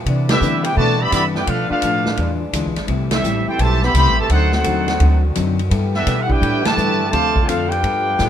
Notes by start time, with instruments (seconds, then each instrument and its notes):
Already playing: trombone section B3
0.06 upright bass C3, hollow-body jazz guitar C3 E3 B3 D4, trombone section D3 D4 E4, kick, ride
0.29 trombone section G3 B3 E4, trumpet section D4 G4 B4 E5, snare, ride
0.41 hollow-body jazz guitar C3 E3 B3 D4, upright bass D3, hi-hat pedal
0.64 trombone section B3 E4 G4, trumpet section E4 B4 D5 G5, ride
0.76 upright bass B2, hollow-body jazz guitar C3 E3 B3, trombone section A3, trumpet section F#4 B4 D5 A5, kick
0.80 hollow-body jazz guitar D4
1.00 trombone section E3 G3 B3, trumpet section G4 D5 E5 B5
1.11 upright bass G2, hollow-body jazz guitar C3 E3 B3 D4, trombone section E3 G3 B3, trumpet section G4 D5 E5 B5, kick, hi-hat pedal, ride
1.35 trombone section B3 E4 G4, trumpet section E4 B4 D5 G5, snare
1.46 upright bass B2, hollow-body jazz guitar B2 F3 A3 D4, trombone section A3 D4 F4, trumpet section D4 A4 B4 F5, kick, ride
1.70 trombone section A3 D4 F4, trumpet section D4 A4 B4 F5, muted upright bass stroke
1.82 upright bass A2, hollow-body jazz guitar B2 F3 A3 D4, kick, hi-hat pedal, ride
2.06 snare
2.17 upright bass E2, trombone section E3 G#3 D4, hollow-body jazz guitar E3 G#3 D4, kick, ride
2.22 hollow-body jazz guitar F4
2.53 upright bass D2, hollow-body jazz guitar E3 G#3 D4 F4, kick, hi-hat pedal, ride
2.65 upright bass B1
2.76 upright bass G#1, snare, ride
2.87 upright bass C2, hollow-body jazz guitar A2 G3 C4 E4, trombone section A3 C4 G4, kick, ride
3.11 trombone section G3 C4 E4, trumpet section C4 G4 A4 E5, snare, ride
3.24 upright bass A1, hollow-body jazz guitar A2 G3 C4 E4, hi-hat pedal
3.47 trombone section C4 E4 G4, trumpet section E4 A4 C5 G5, muted upright bass stroke
3.59 upright bass B1, hollow-body jazz guitar A2 G3 C4 E4, trombone section C3 E3 A3, trumpet section G4 C5 E5 A5, kick, ride
3.82 trombone section B3, trumpet section G4 C5 E5 B5, snare
3.94 upright bass C2, hollow-body jazz guitar A2 G3 C4 E4, trombone section B3, trumpet section G4 C5 E5 B5, kick, hi-hat pedal, ride
4.08 upright bass A1
4.18 upright bass G1, trombone section C3 E3 A3, trumpet section G4 C5 E5 A5
4.30 upright bass D2, trombone section D3 D#3 A3 C4 F#4, hollow-body jazz guitar D3 F#3 C4 D#4, trumpet section D#4 A4 C5 F#5, kick, ride
4.52 trombone section A3 C4 F#4, trumpet section D#4 A4 C5 F#5, snare
4.64 upright bass D#2, hollow-body jazz guitar D3 F#3 C4, kick, hi-hat pedal, ride
4.69 hollow-body jazz guitar D#4
4.88 snare, ride
5.00 upright bass D2, hollow-body jazz guitar D3 F#3 C4 D#4, kick, ride
5.35 upright bass F#2, hollow-body jazz guitar D3 F#3 C4 D#4, kick, hi-hat pedal, ride
5.59 ride
5.70 upright bass G2, trombone section E3 A3 B3 G4, hollow-body jazz guitar G3 B3 E4 A4, kick, ride
5.93 trombone section E3 B3 E4, trumpet section D4 A4 B4 E5, snare
6.06 upright bass B2, hollow-body jazz guitar G3 B3 E4 A4, kick, snare, hi-hat pedal, ride
6.21 trumpet section F#5
6.28 trombone section D4 E4 G4, trumpet section E4 B4 D5 G5, kick
6.40 upright bass A2, hollow-body jazz guitar G3 B3 E4 A4, ride
6.64 trombone section D3 E3 A3, trumpet section E4 B4 D5 A5, snare, ride
6.77 upright bass G2, hollow-body jazz guitar G3 B3 E4 A4, hi-hat pedal
7.10 upright bass D2, trombone section C3 D3 F3 A3 C4 F4, hollow-body jazz guitar D3 C4 F4, trumpet section F4 C5 D5 A5, kick, ride
7.15 hollow-body jazz guitar A4
7.36 kick
7.44 upright bass F2, trombone section A3 C4 F4, trumpet section D4 A4 C5 F5
7.48 hollow-body jazz guitar D3 C4 F4 A4, kick, hi-hat pedal, ride
7.69 trombone section B3 D4 G4, trumpet section F4 B4 D5 G5, ride
7.82 upright bass G2, trombone section F3 B3 G4, hollow-body jazz guitar G3 B3 F4 A4, kick, ride
8.18 upright bass A2, trombone section B2 D3 G3, hollow-body jazz guitar G3 B3 F4 A4, trumpet section B3 D4 G4, snare, hi-hat pedal